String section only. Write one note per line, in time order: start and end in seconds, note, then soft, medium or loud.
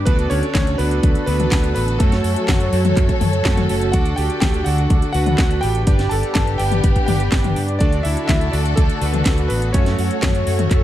0.00 1.96 D4 medium
0.07 1.98 D3 medium
0.07 5.83 F#4 medium
0.07 5.83 A4 loud
2.00 3.92 F#3 medium
2.00 3.92 C#5 loud
3.94 5.85 D3 medium
3.94 5.85 D4 medium
5.87 7.79 B3 medium
5.87 9.70 D4 medium
5.87 7.79 G4 loud
7.80 9.72 D3 medium
7.80 10.84 F#4 medium
7.80 9.72 A4 loud
9.74 10.84 F#3 medium
9.74 10.84 A4 medium
9.74 10.84 C#5 medium